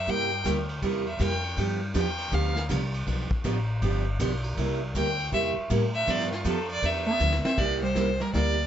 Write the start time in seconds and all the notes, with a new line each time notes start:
Already playing: E5
0.07 G2 C3 G3 A#3 E4 G4 G5, kick, ride
0.44 D2 C3 G3 A#3 E4 G4, kick, hi-hat pedal, ride
0.69 ride
0.82 E2 C3 G3 A#3 E4 G4, kick, ride
1.06 E5, ride
1.19 F2 C3 G3 A#3 E4 G4 G5, kick, hi-hat pedal, ride
1.44 ride
1.57 G2 D3 F3 B3 D4 G4, kick, ride
1.94 E2 D3 F3 B3 D4 G4 G5, kick, hi-hat pedal, ride
2.18 ride
2.31 D2 D3 F3 B3 D4 G4 F5, kick, ride
2.56 snare
2.69 C2 D3 F3 B3 D4 G4, kick, hi-hat pedal, ride
2.94 ride
3.07 B1 D3 F3 B3 D4 G4, kick, ride
3.31 muted upright bass stroke, kick
3.44 A1 D3 F3 B3 D4 G4, kick, hi-hat pedal, ride
3.82 G1 D3 F3 B3 D4 G4, kick, ride
4.20 B1 D3 F3 B3 D4 G4, kick, hi-hat pedal, ride
4.44 ride
4.57 C2 C3 G3 A#3 E4 G4, kick, ride
4.95 D2 C3 G3 A#3 E4 G4 G5, kick, hi-hat pedal, ride
5.19 ride
5.32 E2 C3 G3 A#3 E4 G4 E5, kick, ride
5.57 muted upright bass stroke
5.70 A2 C3 G3 A#3 E4 G4, kick, hi-hat pedal, ride
5.94 E5, ride
6.06 G2 D3 F3 B3 D4 G4, kick, ride
6.10 D5
6.20 snare
6.32 F4, snare
6.45 F2 D3 F3 B3 D4 G4 A4, kick, hi-hat pedal, ride
6.69 D5, ride
6.82 E2 D3 F3 B3 D4 G4 E5, kick, ride
7.06 B3 E5
7.20 D2 D3 F3 B3 D4 G4, hi-hat pedal
7.33 snare
7.44 C4 E5, muted upright bass stroke, snare
7.58 C2 C3 G3 A#3 E4 G4 D5, brush sweep, kick, snare, crash
7.83 G3 C5
7.95 C3 G3 A#3 E4 G4, kick, snare, hi-hat pedal
8.20 G3 A#4, snare
8.34 D2 C3 G3 A#3 E4 G4 D5, brush sweep, kick, snare